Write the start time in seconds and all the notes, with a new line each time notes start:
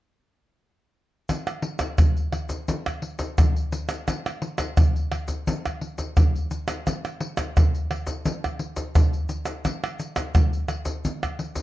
1.29 pandeiro, tamborim, shaker, surdo
1.47 pandeiro, tamborim, shaker
1.62 pandeiro
1.79 pandeiro, tamborim, shaker, surdo
1.98 pandeiro, tamborim, shaker, surdo
2.17 pandeiro, shaker
2.32 pandeiro, tamborim
2.49 pandeiro, shaker, surdo
2.68 pandeiro, shaker, surdo
2.86 pandeiro, tamborim, shaker, surdo
3.02 pandeiro
3.19 pandeiro, shaker, surdo
3.38 pandeiro, tamborim, shaker, surdo
3.56 pandeiro, shaker
3.72 pandeiro, shaker
3.89 pandeiro, tamborim, shaker
4.08 pandeiro, tamborim, shaker, surdo
4.26 pandeiro, tamborim, shaker
4.42 pandeiro
4.58 pandeiro, tamborim, shaker, surdo
4.77 pandeiro, tamborim, shaker, surdo
4.96 pandeiro, shaker
5.12 pandeiro, tamborim
5.28 pandeiro, shaker, surdo
5.47 pandeiro, shaker, surdo
5.66 pandeiro, tamborim, shaker, surdo
5.81 pandeiro
5.98 pandeiro, shaker, surdo
6.17 pandeiro, tamborim, shaker, surdo
6.36 pandeiro, shaker, surdo
6.51 pandeiro, shaker
6.68 pandeiro, tamborim, shaker
6.87 pandeiro, tamborim, shaker, surdo
7.05 pandeiro, tamborim, shaker
7.20 pandeiro
7.37 pandeiro, tamborim, shaker, surdo
7.57 pandeiro, tamborim, shaker, surdo
7.75 pandeiro, shaker
7.91 pandeiro, tamborim
8.07 pandeiro, shaker, surdo
8.25 pandeiro, shaker, surdo
8.44 pandeiro, tamborim, shaker, surdo
8.59 pandeiro
8.76 pandeiro, shaker, surdo
8.95 pandeiro, tamborim, shaker, surdo
9.13 pandeiro, shaker
9.29 pandeiro, shaker
9.45 pandeiro, tamborim, shaker
9.65 pandeiro, tamborim, shaker, surdo
9.84 pandeiro, tamborim, shaker
9.99 pandeiro, shaker
10.16 pandeiro, tamborim, shaker, surdo
10.35 pandeiro, tamborim, shaker, surdo
10.53 pandeiro, shaker
10.68 pandeiro, tamborim, shaker
10.85 pandeiro, shaker, surdo
11.05 pandeiro, shaker, surdo
11.23 pandeiro, tamborim, shaker, surdo
11.39 pandeiro
11.56 pandeiro, shaker, surdo